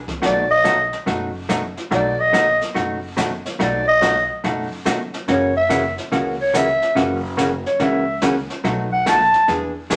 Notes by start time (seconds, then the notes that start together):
0.08 kick, snare
0.22 B1 B2 F#3 A3 D#4 F#4 D5, brush sweep, kick, snare
0.50 D#5
0.64 B2 F#3 A3 D#4 F#4, kick, snare, hi-hat pedal
0.93 snare
1.06 F#1 B2 F#3 A3 D#4 F#4, brush sweep, kick, snare
1.49 B2 F#3 A3 D#4 F#4, kick, snare, hi-hat pedal
1.77 snare
1.91 B1 B2 F#3 A3 D#4 F#4 D5, brush sweep, kick, snare
2.20 D#5
2.32 B2 F#3 A3 D#4 F#4, kick, snare, hi-hat pedal
2.61 snare
2.74 F#1 B2 F#3 A3 D#4 F#4, brush sweep, kick, snare
3.17 B2 F#3 A3 D#4 F#4, kick, snare, hi-hat pedal
3.46 snare
3.59 B1 B2 F#3 A3 D#4 F#4 D5, brush sweep, kick, snare
3.88 D#5
4.02 B2 F#3 A3 D#4 F#4, kick, snare, hi-hat pedal
4.44 F#1 B2 F#3 A3 D#4 F#4, brush sweep, kick, snare
4.85 B2 F#3 A3 D#4 F#4, kick, snare, hi-hat pedal
5.14 snare
5.28 F#1 C#3 E3 A#3 C#4 F#4 C#5, brush sweep, kick, snare
5.57 E5
5.69 C#3 E3 A#3 C#4 F#4, kick, snare, hi-hat pedal
5.98 snare
6.12 C#2 C#3 E3 A#3 C#4 F#4, brush sweep, kick, snare
6.41 C#5
6.54 C#3 E3 A#3 C#4 F#4 E5, kick, snare, hi-hat pedal
6.82 snare
6.95 F#1 C#3 E3 A#3 C#4 F#4, brush sweep, kick, snare
7.37 C#3 E3 A#3 C#4 F#4, kick, snare, hi-hat pedal
7.66 C#5, snare
7.80 C#2 C#3 E3 A#3 C#4 F#4 E5, brush sweep, kick, snare
8.22 C#3 E3 A#3 C#4 F#4, kick, snare, hi-hat pedal
8.50 snare
8.64 B1 B2 F#3 A3 D#4 F#4, brush sweep, kick, snare
8.93 F#5
9.06 B2 F#3 A3 D#4 F#4 A5, kick, snare, hi-hat pedal
9.34 snare
9.48 E2 E3 B3 D4 G#4, brush sweep, kick, snare
9.90 E3 B3 D4 G#4, kick, snare, hi-hat pedal